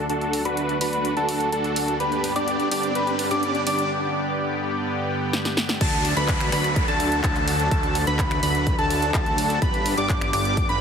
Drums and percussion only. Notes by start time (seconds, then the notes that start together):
0.10 closed hi-hat
0.21 closed hi-hat
0.33 open hi-hat
0.45 closed hi-hat
0.57 closed hi-hat
0.69 closed hi-hat
0.81 open hi-hat
0.93 closed hi-hat
1.05 closed hi-hat
1.17 closed hi-hat
1.29 open hi-hat
1.41 closed hi-hat
1.52 closed hi-hat
1.64 closed hi-hat
1.76 open hi-hat
1.88 closed hi-hat
2.00 closed hi-hat
2.12 closed hi-hat
2.24 open hi-hat
2.36 closed hi-hat
2.48 closed hi-hat
2.60 closed hi-hat
2.71 open hi-hat
2.83 closed hi-hat
2.95 closed hi-hat
3.07 closed hi-hat
3.19 open hi-hat
3.31 closed hi-hat
3.43 closed hi-hat
3.55 closed hi-hat
3.67 open hi-hat
3.79 closed hi-hat
5.33 snare
5.45 snare
5.57 snare
5.69 snare
5.81 kick, closed hi-hat, crash
5.93 closed hi-hat
6.05 open hi-hat
6.17 closed hi-hat
6.28 kick, clap, closed hi-hat
6.40 finger snap, closed hi-hat
6.52 finger snap, open hi-hat
6.64 closed hi-hat
6.76 kick, closed hi-hat
6.88 closed hi-hat
7.00 open hi-hat
7.12 closed hi-hat
7.24 kick, clap, closed hi-hat
7.36 clap, closed hi-hat
7.48 open hi-hat
7.60 closed hi-hat
7.71 kick, closed hi-hat
7.83 closed hi-hat
7.95 open hi-hat
8.07 closed hi-hat
8.19 kick, clap, closed hi-hat
8.31 finger snap, closed hi-hat
8.43 open hi-hat
8.55 closed hi-hat
8.67 kick, closed hi-hat
8.79 closed hi-hat
8.90 open hi-hat
9.02 closed hi-hat
9.14 kick, clap, closed hi-hat
9.26 closed hi-hat
9.38 open hi-hat
9.50 closed hi-hat
9.62 kick, closed hi-hat
9.74 closed hi-hat
9.86 open hi-hat
9.98 closed hi-hat
10.09 kick, clap, closed hi-hat
10.21 finger snap, closed hi-hat
10.33 finger snap, open hi-hat
10.45 closed hi-hat
10.57 kick, closed hi-hat
10.69 closed hi-hat